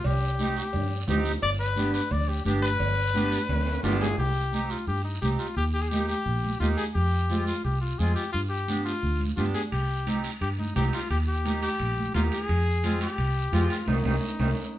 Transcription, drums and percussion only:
0.04 cowbell loud
0.04 high conga soft
0.04 low conga medium
0.04 long guiro medium
0.39 high conga medium
0.39 short guiro medium
0.57 short guiro medium
0.73 cowbell medium
0.73 high conga soft
0.73 low conga medium
0.73 long guiro medium
1.08 high conga medium
1.08 low conga medium
1.08 low timbale medium
1.08 short guiro medium
1.25 short guiro medium
1.42 cowbell loud
1.42 high conga soft
1.76 high conga medium
1.76 short guiro medium
1.94 short guiro medium
2.11 cowbell medium
2.11 high conga soft
2.11 low conga medium
2.11 long guiro medium
2.45 high conga medium
2.45 short guiro medium
2.62 short guiro medium
2.80 cowbell loud
2.80 high conga soft
2.80 low conga medium
2.80 long guiro medium
3.15 high conga medium
3.15 short guiro medium
3.32 short guiro medium
3.49 cowbell medium
3.49 high conga soft
3.49 low conga medium
3.49 high timbale medium
3.49 long guiro medium
3.66 high timbale medium
3.83 high conga medium
3.83 low timbale medium
3.83 short guiro medium
4.01 low timbale medium
4.01 short guiro medium
4.19 long guiro medium
4.53 high conga medium
4.53 short guiro medium
4.70 short guiro medium
4.87 long guiro medium
5.22 high conga medium
5.22 short guiro medium
5.39 short guiro medium
5.57 long guiro medium
5.91 high conga medium
5.91 short guiro medium
6.09 short guiro medium
6.26 long guiro medium
6.44 high conga medium
6.61 high conga medium
6.61 short guiro medium
6.78 short guiro medium
6.95 long guiro medium
7.30 high conga medium
7.30 short guiro medium
7.47 short guiro medium
7.65 long guiro medium
7.99 high conga medium
7.99 short guiro medium
8.16 short guiro medium
8.34 long guiro medium
8.68 high conga medium
8.68 short guiro medium
8.86 short guiro medium
9.03 long guiro medium
9.20 high conga medium
9.37 high conga medium
9.37 short guiro medium
9.54 short guiro medium
9.72 high timbale medium
9.72 long guiro medium
10.06 high conga medium
10.06 high timbale medium
10.06 short guiro medium
10.24 high timbale medium
10.24 short guiro medium
10.41 high timbale medium
10.41 long guiro medium
10.58 high conga medium
10.76 high conga medium
10.76 high timbale medium
10.76 low timbale medium
10.76 short guiro medium
10.93 high timbale medium
10.93 short guiro medium
11.11 high timbale medium
11.11 long guiro medium
11.45 high conga medium
11.45 high timbale medium
11.45 short guiro medium
11.62 high timbale medium
11.62 short guiro medium
11.79 high timbale medium
11.79 long guiro medium
11.98 high conga medium
12.14 high conga medium
12.14 high timbale medium
12.14 low timbale medium
12.14 short guiro medium
12.32 high timbale medium
12.32 short guiro medium
12.49 high timbale medium
12.49 long guiro medium
12.84 high conga medium
12.84 high timbale medium
12.84 short guiro medium
13.01 high timbale medium
13.01 short guiro medium
13.18 high timbale medium
13.18 long guiro medium
13.53 high conga medium
13.53 high timbale medium
13.53 low timbale medium
13.53 short guiro medium
13.70 high timbale medium
13.70 short guiro medium
13.87 high conga loud
13.87 high timbale medium
13.87 long guiro medium
14.04 high conga loud
14.04 high timbale medium
14.04 long guiro medium
14.39 high conga medium
14.39 high timbale medium
14.39 long guiro medium

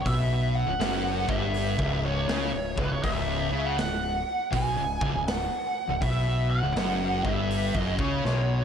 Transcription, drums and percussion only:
0.06 kick loud
0.06 open hi-hat medium
0.81 snare loud
0.81 open hi-hat medium
1.29 kick loud
1.54 open hi-hat medium
1.79 kick loud
2.29 snare loud
2.29 open hi-hat medium
2.78 kick loud
3.04 kick loud
3.04 open hi-hat medium
3.78 snare loud
3.78 open hi-hat medium
4.53 kick loud
4.53 open hi-hat medium
5.01 kick loud
5.28 snare loud
5.28 open hi-hat medium
6.02 kick loud
6.02 open hi-hat medium
6.76 snare loud
6.76 open hi-hat medium
7.25 kick loud
7.51 open hi-hat medium
7.75 kick loud
7.99 kick loud
8.25 snare medium

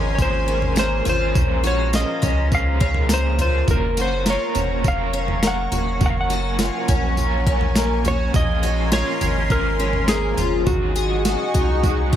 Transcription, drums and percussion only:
0.19 kick medium
0.19 floor tom medium
0.19 tambourine medium
0.62 floor tom medium
0.77 snare loud
0.77 tambourine loud
1.06 floor tom medium
1.06 tambourine medium
1.35 kick loud
1.35 floor tom loud
1.35 tambourine medium
1.65 tambourine medium
1.93 snare loud
1.93 tambourine loud
2.23 kick medium
2.23 floor tom medium
2.23 tambourine medium
2.52 kick medium
2.52 floor tom medium
2.52 tambourine medium
2.81 kick loud
2.95 floor tom medium
3.09 snare loud
3.09 tambourine loud
3.39 floor tom medium
3.39 tambourine medium
3.68 kick loud
3.68 floor tom loud
3.68 tambourine medium
3.97 tambourine medium
4.26 snare loud
4.26 tambourine loud
4.55 floor tom medium
4.55 tambourine medium
4.84 kick medium
4.84 floor tom medium
4.84 tambourine medium
5.28 floor tom medium
5.43 snare loud
5.43 tambourine medium
5.72 floor tom medium
5.72 tambourine medium
6.01 kick loud
6.01 floor tom loud
6.01 tambourine medium
6.30 tambourine medium
6.59 snare loud
6.59 tambourine loud
6.88 kick medium
6.88 floor tom medium
6.88 tambourine medium
7.17 floor tom medium
7.17 tambourine medium
7.47 kick loud
7.61 floor tom medium
7.75 snare loud
7.75 tambourine loud
8.05 floor tom medium
8.05 tambourine medium
8.34 kick loud
8.34 floor tom loud
8.34 tambourine medium
8.64 tambourine medium
8.92 snare loud
8.92 tambourine loud
9.21 floor tom medium
9.21 tambourine medium
9.50 kick medium
9.50 floor tom medium
9.50 tambourine medium
9.93 floor tom medium
10.08 snare loud
10.08 tambourine loud
10.37 floor tom medium
10.37 tambourine medium
10.67 kick loud
10.67 floor tom loud
10.67 tambourine medium
10.96 tambourine medium
11.25 snare loud
11.25 tambourine loud
11.54 kick medium
11.54 floor tom medium
11.54 tambourine medium
11.84 kick medium
11.84 floor tom medium
11.84 tambourine medium
12.13 kick loud

